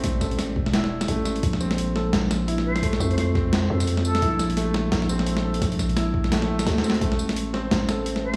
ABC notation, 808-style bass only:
X:1
M:4/4
L:1/8
Q:"Swing 16ths" 1/4=172
K:Bblyd
V:1 name="808-style bass" clef=bass
A,,,3 E,,,3 A,,,2 | B,,,4 B,,,4 | z F,,4 F,,3 | B,,,4 B,,,4 |
B,,,6 D,,2 | A,,,4 A,,,4 |]